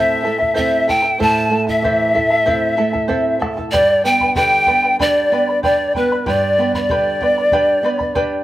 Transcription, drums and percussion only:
0.42 bombo low
0.58 bombo low
0.89 bombo low
1.21 bombo low
1.69 bombo low
1.85 bombo low
2.17 bombo low
2.48 bombo low
2.95 bombo low
3.10 bombo low
3.42 bombo rim, bombo low
3.59 bombo low
3.74 bombo low
4.21 bombo low
4.36 bombo low
4.67 bombo low
5.00 bombo low
5.63 bombo low
5.94 bombo low
6.26 bombo low
6.74 bombo low
6.90 bombo low
7.21 bombo low
7.52 bombo low
8.00 bombo low
8.15 bombo low

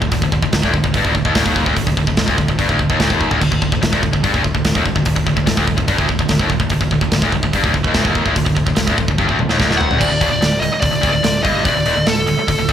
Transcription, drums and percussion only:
0.02 kick
0.12 kick, open hi-hat
0.22 kick
0.32 kick
0.42 kick
0.53 kick, snare, open hi-hat
0.63 kick
0.74 kick
0.84 kick
0.94 kick, open hi-hat
1.05 kick
1.15 kick
1.25 kick
1.35 kick, snare, open hi-hat
1.46 kick
1.56 kick
1.66 kick
1.77 kick, open hi-hat
1.87 kick
1.97 kick
2.07 kick
2.17 kick, snare, open hi-hat
2.28 kick
2.38 kick
2.48 kick
2.59 kick, open hi-hat
2.69 kick
2.79 kick
2.90 kick
3.00 kick, snare, open hi-hat
3.10 kick
3.21 kick
3.31 kick
3.41 kick, crash
3.52 kick
3.62 kick
3.72 kick
3.83 kick, snare, open hi-hat
3.93 kick
4.03 kick
4.13 kick
4.24 kick, open hi-hat
4.34 kick
4.44 kick
4.55 kick
4.65 kick, snare, open hi-hat
4.75 kick
4.86 kick
4.96 kick
5.05 kick, open hi-hat
5.16 kick
5.27 kick
5.37 kick
5.47 kick, snare, open hi-hat
5.57 kick
5.68 kick
5.78 kick
5.88 kick, open hi-hat
5.98 kick
6.09 kick
6.19 kick
6.29 kick, snare, open hi-hat
6.39 kick
6.50 kick
6.60 kick
6.70 kick, open hi-hat
6.81 kick
6.91 kick
7.01 kick
7.12 kick, snare, open hi-hat
7.22 kick
7.32 kick
7.43 kick
7.53 kick, open hi-hat
7.64 kick
7.74 kick
7.84 kick
7.94 kick, snare, open hi-hat
8.05 kick
8.15 kick
8.26 kick
8.36 kick, open hi-hat
8.46 kick
8.57 kick
8.67 kick
8.76 kick, snare, open hi-hat
8.87 kick
8.98 kick
9.08 kick
9.18 kick, high tom
9.29 kick
9.39 mid tom
9.49 snare
9.60 kick, snare
9.71 snare
9.81 floor tom
9.91 floor tom
10.01 kick, crash
10.21 kick, open hi-hat
10.42 snare, open hi-hat
10.63 open hi-hat
10.82 kick, open hi-hat
11.03 kick, open hi-hat
11.24 snare, open hi-hat
11.45 kick, open hi-hat
11.65 kick, open hi-hat
11.86 open hi-hat
12.07 snare, open hi-hat
12.27 open hi-hat
12.48 kick, open hi-hat
12.69 kick, open hi-hat

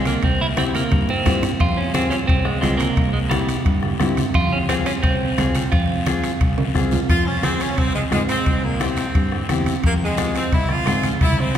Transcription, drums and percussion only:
0.05 high conga, high timbale, short guiro
0.22 bombo low, high conga, high timbale, long guiro
0.57 bombo rim, high conga, high timbale, short guiro
0.75 high conga, high timbale, short guiro
0.91 bombo low, high conga, high timbale, long guiro
1.09 low conga
1.26 bombo low, bombo rim, low conga, high timbale, low timbale, short guiro
1.43 low conga, high timbale, short guiro
1.60 bombo low, high conga, high timbale, long guiro
1.94 bombo rim, high conga, high timbale, short guiro
2.11 high timbale, short guiro
2.28 bombo low, high conga, high timbale, long guiro
2.45 bombo rim
2.62 bombo rim, high conga, high timbale, low timbale, short guiro
2.79 high conga, high timbale, short guiro
2.96 bombo low, high conga, high timbale, long guiro
3.31 bombo rim, high conga, high timbale, short guiro
3.49 high timbale, short guiro
3.65 bombo low, high conga, high timbale, long guiro
3.83 bombo rim, high conga
4.00 bombo rim, high conga, high timbale, low timbale, short guiro
4.17 high conga, high timbale, short guiro
4.34 bombo low, high conga, high timbale, long guiro
4.69 bombo rim, high conga, high timbale, short guiro
4.86 high timbale, short guiro
5.03 bombo low, high conga, high timbale, long guiro
5.38 bombo rim, high conga, high timbale, low timbale, short guiro
5.55 high conga, high timbale, short guiro
5.72 bombo low, high timbale, long guiro
6.06 bombo rim, high conga, high timbale, short guiro
6.24 high timbale, short guiro
6.41 bombo low, high conga, high timbale, long guiro
6.58 high conga, high timbale
6.75 bombo low, bombo rim, high conga, short guiro
6.91 high conga, low timbale, short guiro
7.08 bombo low, high timbale, long guiro
7.43 bombo rim, high conga, high timbale, short guiro
7.60 high timbale, short guiro
7.77 bombo low, high conga, high timbale, long guiro
7.94 high conga
8.12 bombo rim, high conga, high timbale, low timbale, short guiro
8.29 high timbale, short guiro
8.46 bombo low, high conga, high timbale, long guiro
8.80 bombo rim, high conga, high timbale, short guiro
8.97 high timbale, short guiro
9.14 bombo low, high conga, high timbale, long guiro
9.32 bombo rim
9.49 bombo rim, high conga, high timbale, short guiro
9.66 high conga, high timbale, short guiro
9.84 bombo low, high conga, high timbale, long guiro
10.17 bombo rim, high conga, high timbale, short guiro
10.35 high timbale, short guiro
10.52 bombo low, high timbale, long guiro
10.69 bombo rim, high conga
10.86 bombo rim, high conga, high timbale, low timbale, short guiro
11.03 high conga, high timbale, short guiro
11.21 bombo low, high conga, high timbale, long guiro
11.33 high conga
11.55 high conga

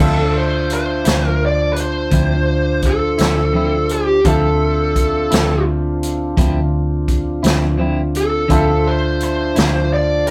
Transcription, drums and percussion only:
0.70 closed hi-hat
1.05 snare, closed hi-hat
1.76 closed hi-hat
2.11 kick, closed hi-hat
2.82 kick, closed hi-hat
3.18 snare, closed hi-hat
3.89 closed hi-hat
4.25 kick, closed hi-hat
4.96 kick, closed hi-hat
5.31 snare, closed hi-hat
6.03 closed hi-hat
6.37 kick, closed hi-hat
7.08 kick, closed hi-hat
7.44 snare, closed hi-hat
8.15 closed hi-hat
8.50 kick, closed hi-hat
9.20 closed hi-hat
9.56 snare, closed hi-hat
10.27 closed hi-hat

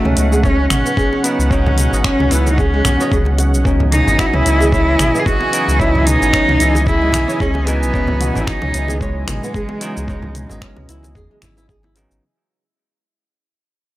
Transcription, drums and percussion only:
0.05 mid tom, high bongo
0.17 closed hi-hat, shaker
0.32 high bongo, high conga, shaker
0.44 kick, shaker
0.70 finger snap, closed hi-hat, mid tom, high conga, shaker
0.86 shaker
0.97 kick, shaker
1.13 high bongo
1.24 closed hi-hat, shaker
1.40 shaker
1.51 kick, shaker
1.66 high conga, low conga
1.78 closed hi-hat, mid tom, shaker
1.93 shaker
2.04 finger snap, kick, shaker
2.19 mid tom, high bongo
2.31 closed hi-hat, shaker
2.46 high bongo, high conga, shaker
2.58 kick, high conga, shaker
2.85 finger snap, closed hi-hat, high conga, low conga, shaker
3.00 high bongo, shaker
3.12 kick, shaker
3.25 high bongo, high conga
3.38 closed hi-hat, high bongo, shaker
3.54 shaker
3.65 kick, shaker
3.80 high conga, low conga
3.92 closed hi-hat, mid tom, shaker
4.08 low conga, shaker
4.19 finger snap, kick, shaker
4.34 mid tom, high bongo
4.46 closed hi-hat, shaker
4.60 high bongo, high conga, shaker
4.72 kick, shaker
4.99 finger snap, closed hi-hat, mid tom, high conga, shaker
5.15 shaker
5.26 kick, shaker
5.40 high bongo
5.53 closed hi-hat, shaker
5.69 shaker
5.80 kick, shaker
5.95 high conga, low conga
6.07 closed hi-hat, mid tom, shaker
6.22 shaker
6.33 finger snap, kick, shaker
6.48 mid tom, high bongo
6.60 closed hi-hat, shaker
6.75 high bongo, high conga, shaker
6.86 kick, high conga, shaker
7.12 finger snap, closed hi-hat, high conga, low conga, shaker
7.28 high bongo, shaker
7.40 kick, shaker
7.54 high bongo, high conga
7.67 closed hi-hat, high bongo, shaker
7.83 shaker
7.94 kick, shaker
8.07 high conga, low conga
8.21 closed hi-hat, mid tom, shaker
8.35 low conga, shaker
8.47 finger snap, kick, shaker
8.62 mid tom, high bongo
8.74 closed hi-hat, shaker
8.88 high bongo, high conga, shaker
9.01 kick, shaker
9.27 finger snap, closed hi-hat, mid tom, high conga, shaker
9.44 shaker
9.54 kick, shaker
9.69 high bongo
9.81 closed hi-hat, shaker
9.97 shaker
10.08 kick, shaker
10.22 high conga, low conga
10.35 closed hi-hat, mid tom, shaker
10.50 low conga, shaker
10.62 finger snap, kick, shaker
10.76 mid tom, high bongo
10.89 closed hi-hat, shaker
11.03 high bongo, high conga, shaker
11.15 kick, high conga, shaker
11.42 finger snap, closed hi-hat, high conga, low conga, shaker
11.57 high bongo, shaker
11.69 kick, shaker
11.83 high bongo, high conga
11.96 closed hi-hat, high bongo, shaker
12.11 shaker

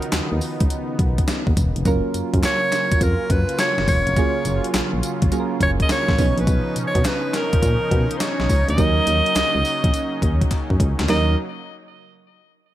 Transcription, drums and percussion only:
0.02 closed hi-hat
0.12 snare, clap, closed hi-hat, tambourine
0.41 open hi-hat, tambourine
0.60 kick, closed hi-hat
0.70 closed hi-hat, tambourine
0.99 kick, closed hi-hat
1.18 kick, closed hi-hat
1.28 snare, clap, closed hi-hat, tambourine
1.47 kick
1.57 kick, closed hi-hat, tambourine
1.76 closed hi-hat
1.85 kick, closed hi-hat, tambourine
2.14 closed hi-hat, tambourine
2.34 kick, closed hi-hat
2.43 snare, clap, closed hi-hat, tambourine
2.72 snare, closed hi-hat, tambourine
2.92 kick, closed hi-hat
3.01 kick, closed hi-hat, tambourine
3.30 kick, closed hi-hat
3.49 closed hi-hat
3.59 snare, clap, closed hi-hat, tambourine
3.78 snare
3.88 kick, open hi-hat, tambourine
4.07 closed hi-hat
4.16 kick, closed hi-hat, tambourine
4.45 closed hi-hat, tambourine
4.64 closed hi-hat
4.74 snare, clap, closed hi-hat, tambourine
5.03 closed hi-hat, tambourine
5.22 kick, closed hi-hat
5.32 closed hi-hat, tambourine
5.61 kick, closed hi-hat
5.80 kick, closed hi-hat
5.89 snare, clap, closed hi-hat, tambourine
6.09 kick, snare
6.18 kick, open hi-hat, tambourine
6.38 closed hi-hat
6.47 kick, closed hi-hat, tambourine
6.76 closed hi-hat, tambourine
6.95 kick, closed hi-hat
7.05 snare, clap, closed hi-hat, tambourine
7.33 snare, closed hi-hat, tambourine
7.53 kick, closed hi-hat
7.62 kick, closed hi-hat, tambourine
7.91 kick, closed hi-hat
8.11 closed hi-hat
8.20 snare, clap, closed hi-hat, tambourine
8.40 snare
8.49 kick, open hi-hat, tambourine
8.69 closed hi-hat
8.78 kick, closed hi-hat, tambourine
9.07 closed hi-hat, tambourine
9.26 closed hi-hat
9.35 snare, clap, closed hi-hat, tambourine
9.65 open hi-hat, tambourine
9.84 kick, closed hi-hat
9.94 closed hi-hat, tambourine
10.22 kick, closed hi-hat
10.41 kick, closed hi-hat
10.51 kick, clap, closed hi-hat
10.70 kick
10.80 kick, closed hi-hat
10.99 snare, closed hi-hat
11.09 snare, clap, open hi-hat

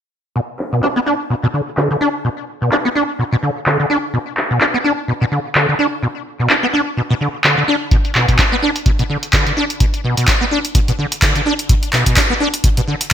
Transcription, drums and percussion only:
0.59 clap
0.83 clap
1.77 clap
2.72 clap
3.66 clap
4.37 clap
4.61 clap
5.55 clap
6.50 clap
7.44 clap
7.91 kick, closed hi-hat
8.05 closed hi-hat
8.15 clap
8.28 kick, closed hi-hat
8.39 kick, clap, closed hi-hat
8.76 closed hi-hat
8.86 kick, closed hi-hat
8.99 closed hi-hat
9.23 closed hi-hat
9.33 kick, clap, closed hi-hat
9.46 closed hi-hat
9.70 closed hi-hat
9.80 kick, closed hi-hat
9.94 closed hi-hat
10.17 closed hi-hat
10.28 kick, clap, closed hi-hat
10.65 closed hi-hat
10.75 kick, closed hi-hat
10.88 closed hi-hat
11.12 closed hi-hat
11.22 kick, clap, closed hi-hat
11.35 closed hi-hat
11.59 closed hi-hat
11.69 kick, closed hi-hat
11.83 closed hi-hat
11.93 clap
12.06 kick, closed hi-hat
12.17 kick, clap, closed hi-hat
12.54 closed hi-hat
12.64 kick, closed hi-hat
12.77 closed hi-hat
13.01 closed hi-hat

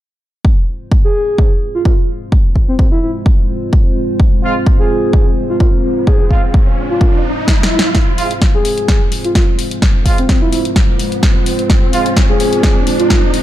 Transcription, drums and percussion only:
0.45 kick
0.92 kick
1.38 kick
1.85 kick
2.32 kick
2.56 kick
2.79 kick
3.26 kick
3.73 kick
4.20 kick
4.66 kick
5.13 kick
5.60 kick
6.07 kick
6.31 kick
6.54 kick
7.01 kick
7.48 kick, snare
7.63 snare
7.79 snare
7.95 kick, snare, closed hi-hat
8.18 open hi-hat
8.31 closed hi-hat
8.42 kick, snare, closed hi-hat
8.65 open hi-hat
8.78 closed hi-hat
8.88 kick, snare, closed hi-hat
9.12 open hi-hat
9.24 closed hi-hat
9.35 kick, snare, closed hi-hat
9.59 open hi-hat
9.71 closed hi-hat
9.82 kick, snare, closed hi-hat
10.06 kick, open hi-hat
10.18 closed hi-hat
10.29 kick, snare, closed hi-hat
10.53 open hi-hat
10.65 closed hi-hat
10.76 kick, snare, closed hi-hat
10.99 open hi-hat
11.12 closed hi-hat
11.23 kick, snare, closed hi-hat
11.46 open hi-hat
11.59 closed hi-hat
11.70 kick, snare, closed hi-hat
11.93 open hi-hat
12.06 closed hi-hat
12.16 kick, snare, closed hi-hat
12.40 open hi-hat
12.53 closed hi-hat
12.63 kick, snare, closed hi-hat
12.87 open hi-hat
13.00 closed hi-hat
13.10 kick, snare, closed hi-hat
13.34 open hi-hat

